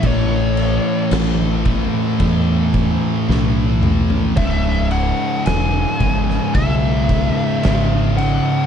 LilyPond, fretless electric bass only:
\new Staff \with { instrumentName = "Fretless electric bass" } { \clef bass \time 4/4 \key cis \minor \tempo 4 = 55 a,,4 a,,4 e,4 b,,4 | cis,,4 e,,8 gis,,8 b,,4 gis,,4 | }